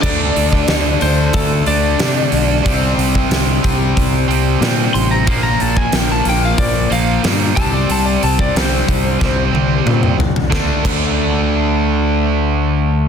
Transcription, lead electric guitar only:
\new Staff \with { instrumentName = "Lead electric guitar" } { \time 4/4 \key d \minor \tempo 4 = 92 d''4. c''8 a'8 d''4.~ | d''8 r2. c'''16 bes''16 | c'''16 bes''16 a''16 gis''16 g''16 a''16 g''16 f''16 d''8 f''8 r8 a''16 d''16 | a''16 d''16 a''16 d''16 c''2 r4 |
r1 | }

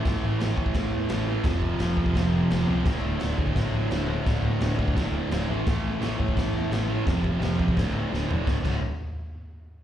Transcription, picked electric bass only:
\new Staff \with { instrumentName = "Picked electric bass" } { \clef bass \time 4/4 \key d \minor \tempo 4 = 171 a,,8 a,,8 a,,8 a,,8 a,,8 e,8 a,,4 | f,,4 f,,8 f,8 f,,4 f,,8 cis,8 | d,,8 d,,8 d,,8 d,,8 d,,8 a,,8 d,,4 | d,,4 d,,8 d,8 d,,4 d,,8 a,,8 |
a,,8 a,,8 a,,8 a,,8 a,,8 e,8 a,,4 | f,,4 f,,8 e,,8 d,,4 d,,8 d,,8 | d,,8 d,,8 r2. | }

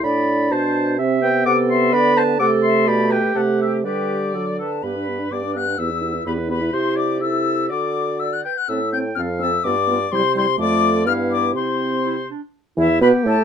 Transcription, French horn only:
\new Staff \with { instrumentName = "French horn" } { \time 2/4 \key a \minor \tempo 4 = 125 d'2 | \key g \major c'8 b4.~ | b4 a4~ | a4 a4 |
g4 fis8 r8 | b16 d'16 b16 d'16 b16 d'16 b16 d'16 | b16 e'16 b16 e'16 b16 e'16 b16 e'16 | e'4 e'4 |
fis'4. r8 | \key c \major c'8 c'8 c'8 c'8 | b8 b8 g8 g8 | a4 b4 |
c'4. r8 | r8 e8 b8 a8 | }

